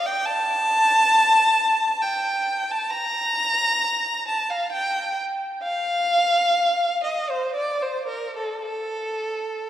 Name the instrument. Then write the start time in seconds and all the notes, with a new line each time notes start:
violin
0.06 G5
0.26 A5
2.02 G5
2.71 A5
2.90 A#5
4.28 A5
4.50 F5
4.72 G5
5.63 F5
7.04 D#5
7.30 C5
7.55 D5
7.82 C5
8.07 A#4
8.37 A4
8.62 A4